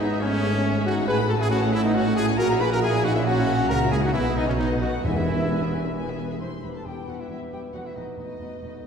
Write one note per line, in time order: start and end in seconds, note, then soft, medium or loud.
0.00 1.08 G#1 medium
0.00 1.08 G#2 loud
0.00 0.21 B3 loud
0.00 1.05 B3 medium
0.00 0.20 D#4 loud
0.00 0.22 D#4 loud
0.00 1.05 G#4 medium
0.00 0.21 D#5 loud
0.00 1.06 E5 medium
0.20 0.85 A3 loud
0.20 0.87 C#4 loud
0.20 0.85 C#4 loud
0.20 0.84 C#5 loud
0.84 1.07 D#4 loud
0.84 1.07 F#4 loud
0.84 0.96 F#4 loud
0.84 1.07 F#5 loud
0.84 1.08 F#5 loud
1.07 2.35 A1 loud
1.07 2.35 A2 loud
1.07 1.18 A3 medium
1.07 1.18 F#4 medium
1.07 1.17 G#4 loud
1.07 1.32 B4 loud
1.07 1.18 B4 loud
1.07 1.18 A5 medium
1.07 1.29 B5 loud
1.07 1.32 B5 loud
1.18 1.29 C#4 medium
1.18 1.29 A4 medium
1.18 1.30 F#5 medium
1.29 1.40 A3 medium
1.29 1.40 F#4 medium
1.29 1.40 F#4 loud
1.29 1.34 A4 loud
1.29 1.40 A4 medium
1.29 1.40 A5 medium
1.29 1.41 A5 medium
1.29 1.42 A5 loud
1.39 1.51 C#4 medium
1.39 1.50 E4 loud
1.39 1.53 G#4 loud
1.39 1.46 G#4 loud
1.39 1.51 A4 medium
1.39 1.52 F#5 medium
1.39 1.51 G#5 loud
1.39 1.53 G#5 loud
1.49 1.61 A3 medium
1.49 1.71 C#4 loud
1.49 1.61 F#4 loud
1.49 1.72 F#4 loud
1.49 1.73 F#5 loud
1.49 1.74 F#5 loud
1.49 1.62 A5 medium
1.62 1.73 C#4 medium
1.62 1.73 A4 medium
1.62 1.73 F#5 medium
1.72 1.84 A3 medium
1.72 1.77 C#4 loud
1.72 1.84 E4 loud
1.72 1.86 E4 loud
1.72 1.84 F#4 medium
1.72 1.84 E5 loud
1.72 1.85 A5 medium
1.83 1.89 B3 loud
1.83 1.95 C#4 medium
1.83 1.95 D#4 loud
1.83 1.96 D#4 loud
1.83 1.95 A4 medium
1.83 1.93 D#5 loud
1.83 1.95 D#5 loud
1.83 1.95 F#5 medium
1.94 2.05 A3 medium
1.94 2.05 C#4 loud
1.94 2.16 F#4 loud
1.94 2.05 F#4 medium
1.94 2.06 F#4 loud
1.94 2.00 F#5 loud
1.94 2.17 F#5 loud
1.94 2.06 A5 medium
2.05 2.17 C#4 medium
2.05 2.17 A4 medium
2.05 2.18 F#5 medium
2.15 2.28 A3 loud
2.15 2.39 E4 loud
2.15 2.28 F#4 medium
2.15 2.26 G#4 loud
2.15 2.27 G#4 loud
2.15 2.38 G#5 loud
2.15 2.28 A5 medium
2.28 2.39 C#4 medium
2.28 2.39 A4 medium
2.28 2.39 F#5 medium
2.37 3.68 A#1 loud
2.37 3.68 A#2 loud
2.37 2.49 A#3 medium
2.37 2.61 F#4 loud
2.37 2.49 F#4 medium
2.37 2.48 A#4 loud
2.37 2.63 A#4 loud
2.37 2.50 F#5 medium
2.37 2.62 A#5 loud
2.37 2.60 A#5 loud
2.50 2.61 C#4 medium
2.50 2.61 E4 medium
2.50 2.62 E5 medium
2.60 2.72 A#3 medium
2.60 2.72 F#4 medium
2.60 2.72 G#4 loud
2.60 2.71 B4 loud
2.60 2.72 F#5 medium
2.60 2.71 B5 loud
2.71 2.83 C#4 medium
2.71 2.83 E4 medium
2.71 2.82 F#4 loud
2.71 2.77 A#4 loud
2.71 2.83 E5 medium
2.71 2.75 A#5 loud
2.71 2.77 A#5 loud
2.82 2.93 A#3 loud
2.82 3.04 E4 loud
2.82 2.93 F#4 medium
2.82 3.06 G#4 loud
2.82 2.92 G#4 loud
2.82 2.94 F#5 medium
2.82 3.05 G#5 loud
2.82 3.04 G#5 loud
2.94 3.05 C#4 medium
2.94 3.05 E4 medium
2.94 3.05 E5 medium
3.04 3.16 A#3 medium
3.04 3.09 D#4 loud
3.04 3.14 F#4 loud
3.04 3.15 F#4 medium
3.04 3.16 F#4 loud
3.04 3.08 F#5 loud
3.04 3.16 F#5 loud
3.04 3.16 F#5 medium
3.14 3.24 C#4 loud
3.14 3.26 C#4 medium
3.14 3.27 E4 loud
3.14 3.26 E4 medium
3.14 3.25 E4 loud
3.14 3.26 E5 loud
3.14 3.19 E5 loud
3.14 3.26 E5 medium
3.25 3.36 A#3 medium
3.25 3.69 C#4 loud
3.25 3.71 F#4 loud
3.25 3.69 F#4 loud
3.25 3.37 F#4 medium
3.25 3.70 F#5 loud
3.25 3.69 F#5 loud
3.25 3.37 F#5 medium
3.37 3.48 C#4 medium
3.37 3.48 E4 medium
3.37 3.50 E5 medium
3.48 3.59 A#3 medium
3.48 3.59 F#4 medium
3.48 3.60 F#5 medium
3.60 3.70 C#4 medium
3.60 3.71 E4 medium
3.60 3.71 E5 medium
3.68 4.14 C#2 loud
3.68 4.14 C#3 loud
3.68 3.81 A#3 medium
3.68 3.92 F#4 loud
3.68 3.81 F#4 medium
3.68 3.91 A#4 loud
3.68 3.80 A#4 loud
3.68 3.81 F#5 medium
3.68 3.93 A#5 loud
3.68 3.92 A#5 loud
3.81 3.92 C#4 medium
3.81 3.92 E4 medium
3.81 3.93 E5 medium
3.91 4.03 A#3 medium
3.91 4.03 E4 loud
3.91 4.03 F#4 medium
3.91 4.04 G#4 loud
3.91 3.97 G#4 loud
3.91 4.03 F#5 medium
3.91 4.03 G#5 loud
4.01 4.14 C#4 medium
4.01 4.14 D#4 loud
4.01 4.14 E4 medium
4.01 4.15 F#4 loud
4.01 4.13 F#4 loud
4.01 4.14 E5 medium
4.01 4.14 F#5 loud
4.01 4.07 F#5 loud
4.13 5.04 B1 medium
4.13 5.04 B2 loud
4.13 4.24 B3 loud
4.13 4.24 B3 medium
4.13 4.38 E4 loud
4.13 4.24 B4 medium
4.13 4.35 E5 loud
4.13 4.21 E5 loud
4.13 4.24 G#5 medium
4.25 4.37 G#3 medium
4.25 4.37 G#4 medium
4.25 4.36 E5 medium
4.35 4.41 B3 loud
4.35 4.48 B3 medium
4.35 4.46 D#4 loud
4.35 4.48 D#4 loud
4.35 4.48 B4 medium
4.35 4.48 D#5 loud
4.35 4.47 D#5 loud
4.35 4.48 G#5 medium
4.47 4.59 G#3 medium
4.47 4.59 A3 medium
4.47 4.57 C#4 medium
4.47 4.53 C#4 loud
4.47 4.59 G#4 medium
4.47 4.58 C#5 medium
4.47 4.59 E5 medium
4.58 4.81 B3 loud
4.58 4.69 B3 medium
4.58 4.81 D#4 loud
4.58 4.69 D#4 loud
4.58 4.69 B4 medium
4.58 4.69 D#5 medium
4.58 4.64 D#5 medium
4.58 4.81 D#5 loud
4.70 4.81 A3 medium
4.70 4.81 A4 medium
4.70 4.82 F#5 medium
4.80 4.93 B3 medium
4.80 5.04 D#4 medium
4.80 4.92 F#4 loud
4.80 4.93 B4 medium
4.80 4.93 D#5 medium
4.80 5.02 F#5 loud
4.80 5.04 F#5 loud
4.93 5.04 A3 medium
4.93 5.04 A4 medium
4.93 5.05 F#5 medium
5.03 6.19 E1 medium
5.03 6.19 E2 medium
5.03 5.69 E2 loud
5.03 5.94 B3 medium
5.03 5.15 B3 medium
5.03 5.94 E4 loud
5.03 5.15 B4 medium
5.03 5.94 E5 loud
5.03 5.96 E5 medium
5.03 5.15 G#5 medium
5.15 5.27 G#3 medium
5.15 5.27 G#4 medium
5.15 5.27 E5 medium
5.27 5.39 B3 medium
5.27 5.39 B4 medium
5.27 5.39 G#5 medium
5.38 5.50 G#3 medium
5.38 5.50 G#4 medium
5.38 5.51 E5 medium
5.50 5.61 B3 medium
5.50 5.61 B4 medium
5.50 5.61 G#5 medium
5.61 5.73 G#3 medium
5.61 5.73 G#4 medium
5.61 5.73 E5 medium
5.72 5.84 B3 medium
5.72 5.84 B4 medium
5.72 5.85 G#5 medium
5.84 5.96 G#3 medium
5.84 5.96 G#4 medium
5.84 5.96 E5 medium
5.95 6.06 B3 medium
5.95 6.06 B4 medium
5.95 6.07 G#5 medium
6.07 6.19 G#3 medium
6.07 6.19 G#4 medium
6.07 6.19 E5 medium
6.19 6.30 B3 medium
6.19 6.30 B4 medium
6.19 6.31 G#5 medium
6.30 6.41 G#3 medium
6.30 6.41 G#4 medium
6.30 6.41 E5 medium
6.41 6.49 E1 soft
6.41 6.50 E2 soft
6.41 6.87 A3 soft
6.41 6.62 B3 soft
6.41 7.70 B3 soft
6.41 6.62 E4 soft
6.41 6.63 G4 soft
6.41 6.63 B4 soft
6.41 8.87 B4 soft
6.41 6.52 C5 medium
6.41 6.62 C6 medium
6.41 6.47 C6 soft
6.63 6.71 E1 soft
6.63 6.72 E2 soft
6.63 6.84 B3 soft
6.63 6.84 E4 soft
6.63 6.86 G4 soft
6.63 6.77 B4 soft
6.63 6.85 B4 soft
6.63 6.74 B5 soft
6.63 6.75 B5 soft
6.75 6.87 A4 medium
6.75 6.86 A5 soft
6.75 6.87 A5 soft
6.85 6.93 E1 soft
6.85 6.94 E2 soft
6.85 7.29 G3 soft
6.85 7.07 B3 soft
6.85 7.07 E4 soft
6.85 7.09 G4 medium
6.85 7.07 G4 soft
6.85 7.07 B4 soft
6.85 7.10 G5 soft
6.85 7.08 G5 soft
7.08 7.16 E1 soft
7.08 7.16 E2 soft
7.08 7.28 B3 soft
7.08 7.28 E4 soft
7.08 7.22 F#4 medium
7.08 7.29 G4 soft
7.08 7.30 B4 soft
7.08 7.22 F#5 soft
7.08 7.19 F#5 soft
7.20 7.29 E4 soft
7.20 7.30 E5 soft
7.29 7.38 E1 soft
7.29 7.38 E2 soft
7.29 7.75 G3 soft
7.29 7.50 B3 soft
7.29 7.50 E4 soft
7.29 7.40 E4 medium
7.29 7.52 G4 soft
7.29 7.52 B4 soft
7.29 7.52 E5 soft
7.29 7.39 E5 soft
7.51 7.60 E1 soft
7.51 7.60 E2 soft
7.51 7.72 B3 soft
7.51 7.73 E4 soft
7.51 7.61 G4 soft
7.51 7.74 G4 soft
7.51 7.73 B4 soft
7.51 7.61 G5 soft
7.51 7.59 G5 soft
7.73 7.82 E1 soft
7.73 7.82 E2 soft
7.73 7.94 A3 soft
7.73 8.63 A3 soft
7.73 8.87 A3 soft
7.73 7.94 B3 soft
7.73 7.87 F#4 medium
7.73 7.95 F#4 soft
7.73 7.95 B4 soft
7.73 7.79 F#5 medium
7.73 7.88 F#5 medium
7.85 7.97 E4 soft
7.85 7.96 E5 soft
7.85 7.97 E5 soft
7.95 8.04 E1 soft
7.95 8.04 E2 soft
7.95 8.16 A3 soft
7.95 8.16 B3 soft
7.95 8.17 D#4 soft
7.95 8.17 F#4 soft
7.95 8.17 B4 soft
7.95 8.04 D#5 soft
7.95 8.18 D#5 soft
8.17 8.26 E1 soft
8.17 8.25 E2 soft
8.17 8.38 A3 soft
8.17 8.38 B3 soft
8.17 8.83 D#4 soft
8.17 8.39 F#4 soft
8.17 8.39 B4 soft
8.17 8.83 D#5 soft
8.39 8.48 E1 soft
8.39 8.47 E2 soft
8.39 8.60 A3 soft
8.39 8.60 B3 soft
8.39 8.62 F#4 soft
8.39 8.62 B4 soft
8.61 8.70 E1 soft
8.61 8.70 E2 soft
8.61 8.83 A3 soft
8.61 8.83 B3 soft
8.61 8.87 B3 soft
8.61 8.83 F#4 soft
8.61 8.82 B4 soft
8.84 8.87 B4 soft